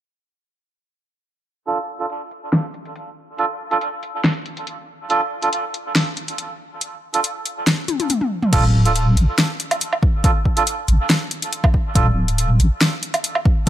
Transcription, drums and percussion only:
1.67 closed hi-hat medium
2.00 closed hi-hat soft
2.10 closed hi-hat medium
2.31 closed hi-hat soft
2.53 snare loud
2.53 closed hi-hat medium
2.74 closed hi-hat medium
2.85 closed hi-hat medium
2.96 closed hi-hat medium
3.38 closed hi-hat medium
3.71 closed hi-hat soft
3.81 closed hi-hat medium
4.03 closed hi-hat medium
4.24 snare loud
4.24 closed hi-hat medium
4.46 closed hi-hat medium
4.57 closed hi-hat soft
4.67 closed hi-hat medium
5.10 closed hi-hat medium
5.42 closed hi-hat soft
5.53 closed hi-hat medium
5.74 closed hi-hat soft
5.95 snare loud
5.95 closed hi-hat medium
6.17 closed hi-hat soft
6.28 closed hi-hat soft
6.38 closed hi-hat medium
6.81 closed hi-hat medium
7.14 closed hi-hat medium
7.24 closed hi-hat medium
7.46 closed hi-hat soft
7.67 snare loud
7.67 closed hi-hat medium
7.88 closed hi-hat medium
7.88 high tom medium
8.00 closed hi-hat soft
8.00 high tom medium
8.10 closed hi-hat medium
8.10 mid tom medium
8.21 mid tom medium
8.43 mid tom medium
8.53 kick loud
8.53 closed hi-hat medium
8.53 crash medium
8.85 closed hi-hat medium
8.96 closed hi-hat medium
9.17 closed hi-hat medium
9.38 snare loud
9.38 closed hi-hat medium
9.60 closed hi-hat medium
9.71 closed hi-hat medium
9.71 low woodblock medium
9.81 closed hi-hat medium
9.93 low woodblock soft
10.03 kick loud
10.24 kick loud
10.24 closed hi-hat medium
10.45 kick medium
10.57 closed hi-hat medium
10.67 closed hi-hat medium
10.88 closed hi-hat medium
11.10 snare loud
11.10 closed hi-hat medium
11.31 closed hi-hat medium
11.42 closed hi-hat medium
11.53 closed hi-hat medium
11.64 kick loud
11.64 low woodblock medium
11.74 kick medium
11.95 kick loud
11.95 closed hi-hat medium
12.28 closed hi-hat medium
12.38 closed hi-hat medium
12.60 closed hi-hat medium
12.81 snare loud
12.81 closed hi-hat medium
13.03 closed hi-hat medium
13.14 closed hi-hat medium
13.14 low woodblock soft
13.24 closed hi-hat medium
13.35 low woodblock medium
13.45 kick loud

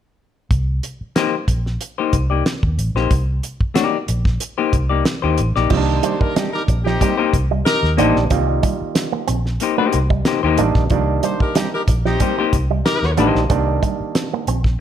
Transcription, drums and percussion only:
0.51 kick medium
0.51 closed hi-hat medium
0.83 closed hi-hat medium
1.16 snare loud
1.16 closed hi-hat medium
1.48 kick medium
1.48 closed hi-hat medium
1.66 snare soft
1.81 closed hi-hat medium
2.13 kick medium
2.13 closed hi-hat medium
2.46 snare loud
2.46 closed hi-hat medium
2.63 kick medium
2.79 closed hi-hat medium
2.96 snare soft
3.11 kick loud
3.11 closed hi-hat medium
3.43 closed hi-hat medium
3.61 kick medium
3.75 snare loud
3.75 closed hi-hat medium
4.08 closed hi-hat medium
4.25 kick medium
4.25 snare soft
4.40 closed hi-hat medium
4.73 kick medium
4.73 closed hi-hat medium
5.05 snare loud
5.05 closed hi-hat medium
5.38 closed hi-hat medium
5.56 snare soft
5.70 kick medium
5.70 crash medium
6.03 closed hi-hat medium
6.21 kick medium
6.36 snare loud
6.36 closed hi-hat loud
6.68 kick medium
6.68 closed hi-hat medium
6.87 snare soft
7.01 kick medium
7.01 closed hi-hat medium
7.33 kick medium
7.33 closed hi-hat medium
7.66 snare loud
7.66 closed hi-hat medium
7.84 snare soft
7.98 closed hi-hat medium
8.16 snare soft
8.30 kick loud
8.30 closed hi-hat medium
8.63 kick loud
8.63 closed hi-hat medium
8.95 snare loud
8.95 closed hi-hat loud
9.28 closed hi-hat medium
9.46 snare soft
9.60 closed hi-hat medium
9.93 closed hi-hat medium
10.10 kick medium
10.25 snare loud
10.25 closed hi-hat medium
10.57 closed hi-hat medium
10.75 kick medium
10.75 snare soft
10.90 kick loud
10.90 closed hi-hat medium
11.23 closed hi-hat medium
11.40 kick medium
11.55 snare loud
11.55 closed hi-hat loud
11.88 kick medium
11.88 closed hi-hat medium
12.05 snare soft
12.20 kick medium
12.20 closed hi-hat medium
12.53 kick medium
12.53 closed hi-hat medium
12.86 snare loud
12.86 closed hi-hat medium
13.03 snare soft
13.17 closed hi-hat medium
13.35 snare soft
13.50 kick loud
13.50 closed hi-hat medium
13.83 kick medium
13.83 closed hi-hat medium
14.15 snare loud
14.15 closed hi-hat loud
14.47 closed hi-hat medium
14.64 kick medium
14.64 snare soft

